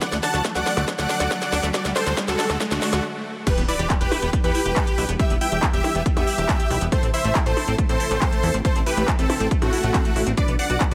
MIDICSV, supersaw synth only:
0, 0, Header, 1, 2, 480
1, 0, Start_track
1, 0, Tempo, 431655
1, 17, Time_signature, 4, 2, 24, 8
1, 12165, End_track
2, 0, Start_track
2, 0, Title_t, "Supersaw synth"
2, 0, Program_c, 0, 81
2, 16, Note_on_c, 0, 74, 80
2, 17, Note_on_c, 0, 78, 101
2, 178, Note_off_c, 0, 74, 0
2, 178, Note_off_c, 0, 78, 0
2, 256, Note_on_c, 0, 78, 81
2, 256, Note_on_c, 0, 81, 96
2, 499, Note_off_c, 0, 78, 0
2, 499, Note_off_c, 0, 81, 0
2, 615, Note_on_c, 0, 78, 102
2, 616, Note_on_c, 0, 74, 84
2, 940, Note_off_c, 0, 74, 0
2, 940, Note_off_c, 0, 78, 0
2, 1096, Note_on_c, 0, 74, 85
2, 1096, Note_on_c, 0, 78, 105
2, 1841, Note_off_c, 0, 74, 0
2, 1841, Note_off_c, 0, 78, 0
2, 1935, Note_on_c, 0, 74, 108
2, 1936, Note_on_c, 0, 66, 77
2, 2098, Note_off_c, 0, 66, 0
2, 2098, Note_off_c, 0, 74, 0
2, 2177, Note_on_c, 0, 69, 80
2, 2178, Note_on_c, 0, 72, 101
2, 2420, Note_off_c, 0, 69, 0
2, 2420, Note_off_c, 0, 72, 0
2, 2537, Note_on_c, 0, 66, 78
2, 2537, Note_on_c, 0, 69, 101
2, 2860, Note_off_c, 0, 66, 0
2, 2860, Note_off_c, 0, 69, 0
2, 3017, Note_on_c, 0, 66, 108
2, 3018, Note_on_c, 0, 62, 88
2, 3377, Note_off_c, 0, 62, 0
2, 3377, Note_off_c, 0, 66, 0
2, 3857, Note_on_c, 0, 71, 107
2, 3858, Note_on_c, 0, 67, 82
2, 4019, Note_off_c, 0, 67, 0
2, 4019, Note_off_c, 0, 71, 0
2, 4097, Note_on_c, 0, 71, 80
2, 4097, Note_on_c, 0, 74, 96
2, 4339, Note_off_c, 0, 71, 0
2, 4339, Note_off_c, 0, 74, 0
2, 4456, Note_on_c, 0, 71, 100
2, 4457, Note_on_c, 0, 67, 82
2, 4780, Note_off_c, 0, 67, 0
2, 4780, Note_off_c, 0, 71, 0
2, 4937, Note_on_c, 0, 67, 86
2, 4937, Note_on_c, 0, 71, 101
2, 5681, Note_off_c, 0, 67, 0
2, 5681, Note_off_c, 0, 71, 0
2, 5777, Note_on_c, 0, 67, 78
2, 5777, Note_on_c, 0, 76, 102
2, 5939, Note_off_c, 0, 67, 0
2, 5939, Note_off_c, 0, 76, 0
2, 6016, Note_on_c, 0, 76, 77
2, 6016, Note_on_c, 0, 79, 95
2, 6259, Note_off_c, 0, 76, 0
2, 6259, Note_off_c, 0, 79, 0
2, 6376, Note_on_c, 0, 67, 78
2, 6376, Note_on_c, 0, 76, 101
2, 6700, Note_off_c, 0, 67, 0
2, 6700, Note_off_c, 0, 76, 0
2, 6857, Note_on_c, 0, 67, 89
2, 6857, Note_on_c, 0, 76, 108
2, 7601, Note_off_c, 0, 67, 0
2, 7601, Note_off_c, 0, 76, 0
2, 7697, Note_on_c, 0, 69, 79
2, 7697, Note_on_c, 0, 72, 102
2, 7858, Note_off_c, 0, 69, 0
2, 7858, Note_off_c, 0, 72, 0
2, 7937, Note_on_c, 0, 72, 80
2, 7937, Note_on_c, 0, 76, 92
2, 8180, Note_off_c, 0, 72, 0
2, 8180, Note_off_c, 0, 76, 0
2, 8297, Note_on_c, 0, 69, 80
2, 8297, Note_on_c, 0, 72, 101
2, 8621, Note_off_c, 0, 69, 0
2, 8621, Note_off_c, 0, 72, 0
2, 8776, Note_on_c, 0, 69, 87
2, 8777, Note_on_c, 0, 72, 106
2, 9521, Note_off_c, 0, 69, 0
2, 9521, Note_off_c, 0, 72, 0
2, 9617, Note_on_c, 0, 69, 78
2, 9617, Note_on_c, 0, 72, 102
2, 9779, Note_off_c, 0, 69, 0
2, 9779, Note_off_c, 0, 72, 0
2, 9857, Note_on_c, 0, 71, 94
2, 9858, Note_on_c, 0, 67, 84
2, 10100, Note_off_c, 0, 67, 0
2, 10100, Note_off_c, 0, 71, 0
2, 10216, Note_on_c, 0, 60, 84
2, 10216, Note_on_c, 0, 69, 105
2, 10540, Note_off_c, 0, 60, 0
2, 10540, Note_off_c, 0, 69, 0
2, 10697, Note_on_c, 0, 57, 86
2, 10698, Note_on_c, 0, 66, 109
2, 11441, Note_off_c, 0, 57, 0
2, 11441, Note_off_c, 0, 66, 0
2, 11537, Note_on_c, 0, 71, 80
2, 11537, Note_on_c, 0, 74, 105
2, 11698, Note_off_c, 0, 71, 0
2, 11699, Note_off_c, 0, 74, 0
2, 11776, Note_on_c, 0, 74, 79
2, 11776, Note_on_c, 0, 78, 94
2, 12019, Note_off_c, 0, 74, 0
2, 12019, Note_off_c, 0, 78, 0
2, 12165, End_track
0, 0, End_of_file